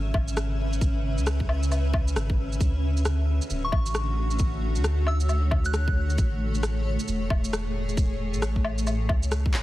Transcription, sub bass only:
0.00 0.13 G#1 loud
0.14 1.19 G#1 loud
1.17 2.15 C#2 loud
2.16 2.59 G#1 loud
2.61 3.40 D2 loud
3.50 3.71 D1 loud
3.72 4.78 A1 loud
4.76 6.18 D2 loud
6.18 6.98 A1 medium
7.08 7.29 E1 loud
7.30 8.36 E1 loud
8.34 9.09 A1 medium
9.09 9.56 C#2 medium
9.54 9.63 E1 medium

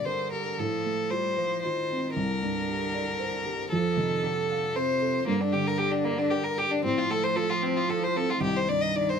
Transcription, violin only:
0.05 0.31 C5 soft
0.32 0.60 A#4 soft
0.59 1.12 A4 soft
1.10 1.62 C5 soft
1.63 2.14 C5 soft
2.15 3.68 A#4 soft
3.72 4.77 A4 medium
4.76 5.27 C5 medium
5.27 5.42 A#3 medium
5.41 5.54 D4 medium
5.52 5.68 G4 medium
5.67 5.79 A#4 medium
5.78 5.92 G4 medium
5.91 6.06 D4 soft
6.04 6.20 A#3 medium
6.18 6.32 D4 medium
6.30 6.45 G4 medium
6.44 6.59 A#4 medium
6.58 6.72 G4 medium
6.71 6.84 D4 medium
6.84 6.99 C4 medium
6.97 7.12 F4 medium
7.10 7.25 A4 medium
7.24 7.38 C5 medium
7.36 7.51 A4 medium
7.50 7.64 F4 medium
7.63 7.78 C4 medium
7.77 7.91 F4 medium
7.89 8.05 A4 medium
8.03 8.18 C5 medium
8.16 8.32 A4 medium
8.30 8.42 F4 medium
8.42 8.58 G4 medium
8.56 8.70 C5 medium
8.68 8.83 D5 medium
8.81 8.97 D#5 medium
8.96 9.11 D5 soft
9.09 9.20 C5 soft

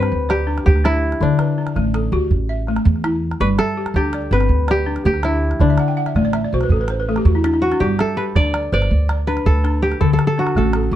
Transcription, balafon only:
0.00 0.48 C4 medium
0.00 0.30 B4 medium
0.00 0.28 D5 medium
0.29 0.84 D5 medium
0.47 0.83 D4 medium
0.84 1.21 D4 medium
1.21 1.58 D3 medium
1.40 1.94 B4 medium
1.58 2.13 D4 medium
1.76 2.13 A3 medium
1.95 2.49 A4 medium
2.13 2.31 F#4 medium
2.13 2.49 G4 medium
2.49 3.04 E5 medium
2.68 3.04 A3 medium
3.04 3.41 E4 medium
3.41 3.77 G3 medium
3.59 4.14 E5 medium
3.77 4.32 G4 medium
3.97 4.33 D4 medium
4.14 4.67 D5 medium
4.32 4.87 C4 medium
4.32 4.69 B4 medium
4.69 5.24 D5 medium
4.86 5.23 D4 medium
5.24 5.61 D4 medium
5.61 5.97 D3 medium
5.70 5.87 E5 medium
5.79 5.96 F#5 medium
5.88 6.05 G5 medium
5.97 6.14 F#5 medium
6.07 6.23 E5 medium
6.16 6.52 A3 medium
6.16 6.24 D5 medium
6.25 6.42 D5 medium
6.34 6.51 E5 medium
6.44 6.61 D5 medium
6.54 6.71 F#4 medium
6.54 6.70 C5 medium
6.63 6.79 B4 medium
6.72 6.88 A4 medium
6.81 6.97 B4 medium
6.90 7.07 C5 medium
7.00 7.16 B4 medium
7.09 7.45 A3 medium
7.09 7.25 A4 medium
7.18 7.34 G4 medium
7.26 7.43 F#4 medium
7.35 7.43 E4 medium
7.44 7.61 D4 medium
7.44 7.53 E4 medium
7.54 7.70 E4 medium
7.63 7.80 F#4 medium
7.72 7.89 D4 medium
7.81 8.18 G3 medium
7.99 8.54 E5 medium
8.17 8.72 G4 medium
8.36 8.72 D4 medium
8.54 9.09 D5 medium
8.73 9.09 B4 medium
8.73 9.27 C5 medium
9.10 9.64 D5 medium
9.28 9.63 D4 medium
9.64 10.01 D4 medium
10.01 10.37 D3 medium
10.38 10.93 D4 medium
10.56 10.93 A3 medium
10.75 10.96 A4 medium

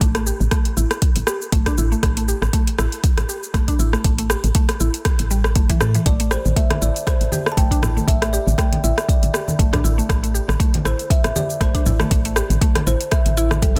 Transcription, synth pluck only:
0.01 0.14 A3 medium
0.15 0.25 A3 medium
0.26 0.39 G4 medium
0.52 0.64 A3 loud
0.77 0.84 E4 medium
1.27 1.40 G4 medium
1.52 1.65 A3 loud
1.67 1.73 D4 loud
1.78 1.91 E4 medium
1.92 2.02 A3 medium
2.03 2.15 A3 medium
2.17 2.27 A3 medium
2.28 2.41 G4 medium
2.53 2.66 A3 loud
2.78 2.86 E4 medium
3.29 3.41 G4 medium
3.54 3.67 A3 loud
3.68 3.74 D4 loud
3.79 3.93 E4 medium
3.93 4.03 A3 medium
4.05 4.17 A3 medium
4.19 4.29 A3 medium
4.30 4.42 G4 medium
4.55 4.68 A3 loud
4.80 4.88 E4 medium
5.31 5.44 G3 medium
5.56 5.68 A3 medium
5.70 5.80 E3 loud
5.81 5.94 A4 medium
5.95 6.06 E3 medium
6.06 6.19 A3 medium
6.20 6.30 A3 medium
6.32 6.44 G4 medium
6.56 6.69 A3 loud
6.82 6.89 E4 medium
7.32 7.45 G4 medium
7.57 7.70 A3 loud
7.71 7.77 D4 loud
7.83 7.96 E4 medium
7.97 8.07 A3 medium
8.08 8.21 A3 medium
8.22 8.32 A3 medium
8.33 8.46 G4 medium
8.58 8.71 A3 loud
8.84 8.91 E4 medium
9.34 9.46 G4 medium
9.59 9.72 A3 loud
9.73 9.79 D4 loud
9.84 9.97 E4 medium
9.98 10.08 A3 medium
10.09 10.22 A3 medium
10.23 10.34 A3 medium
10.34 10.47 G4 medium
10.60 10.72 A3 loud
10.85 10.93 E4 medium
11.36 11.48 G4 medium
11.61 11.73 A3 loud
11.75 11.81 D4 loud
11.86 11.99 E4 medium
12.00 12.10 A3 medium
12.11 12.24 A3 medium
12.25 12.35 A3 medium
12.37 12.49 G4 medium
12.62 12.74 A3 loud
12.87 12.94 E4 medium
13.37 13.51 E4 loud
13.62 13.75 G3 medium
13.76 13.80 E4 medium

